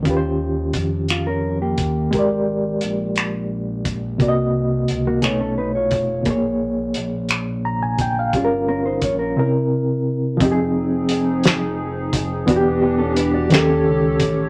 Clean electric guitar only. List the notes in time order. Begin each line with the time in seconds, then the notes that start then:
1.11 F4
1.27 C#4 A#4
1.62 A#3 G4
5.07 A#3 F#4
5.22 B3 G#4
5.40 C#4 A4
5.58 D#4 B4
5.75 F4 C#5
8.68 C#4 A#4
8.86 D#4 C5
9.03 F4 C#5
9.19 C#4 A#4
12.82 B3 G4
12.98 C#4 A4
13.17 D4 B4
13.34 F#4 D5
13.52 C#4 A#4
13.68 C#4 A4